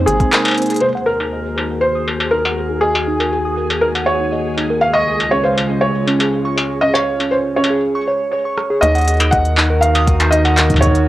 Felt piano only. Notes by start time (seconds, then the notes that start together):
0.06 G#4
0.81 C5
1.06 A#4
1.81 C5
2.31 A#4
2.81 G#4
3.81 A#4
4.06 C#5
4.81 F5
4.93 D#5
5.31 C#5
5.43 C5
5.81 C#5
6.81 D#5
6.94 C#5
7.31 C5
7.56 C#5
8.81 D#5
9.31 F#5
9.81 F5
10.31 D#5
10.81 C#5